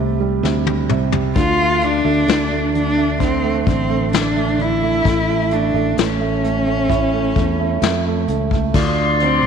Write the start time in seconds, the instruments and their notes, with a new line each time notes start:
Already playing: fingered electric bass C2, felt piano C3 G3, cello A3
0.20 felt piano G3
0.43 fingered electric bass D2, felt piano C3, snare
0.66 felt piano G3, high tom
0.89 fingered electric bass C2, felt piano C3, mid tom
1.12 felt piano G3, floor tom
1.35 fingered electric bass D2, felt piano D3, cello F4, kick, closed hi-hat
1.59 felt piano A3
1.81 felt piano D3, cello D4, closed hi-hat
2.05 fingered electric bass D2, felt piano A3
2.28 fingered electric bass D2, felt piano D3, snare, closed hi-hat
2.52 felt piano A3
2.75 felt piano D3, cello D4, closed hi-hat
2.97 felt piano A3
3.20 felt piano D3, cello C4, kick, closed hi-hat
3.43 felt piano A3
3.66 fingered electric bass A1, felt piano D3, cello C4, kick, closed hi-hat
3.89 felt piano A3
4.12 felt piano D3, cello D4, snare, closed hi-hat
4.36 felt piano A3
4.58 felt piano D3, cello E4, closed hi-hat
4.82 felt piano A3
5.05 fingered electric bass A1, felt piano A3, kick, closed hi-hat
5.29 felt piano A3
5.51 felt piano A3, cello D4, closed hi-hat
5.74 fingered electric bass A1, felt piano A3
5.97 fingered electric bass A1, felt piano A3, cello C#4, snare, closed hi-hat
6.20 felt piano A3
6.43 felt piano A3, closed hi-hat
6.66 felt piano A3
6.89 felt piano E4, kick, closed hi-hat
7.13 felt piano A3
7.35 fingered electric bass E2, felt piano A3, kick, closed hi-hat
7.59 felt piano A3
7.82 fingered electric bass F2, felt piano A3, snare, closed hi-hat
8.06 felt piano A3
8.28 fingered electric bass C#2, felt piano A3, closed hi-hat
8.51 felt piano A3, kick
8.74 fingered electric bass D2, felt piano D3, tonewheel organ F4 D5 C6, kick, crash
9.20 felt piano D3, cello C4, closed hi-hat
9.43 fingered electric bass C2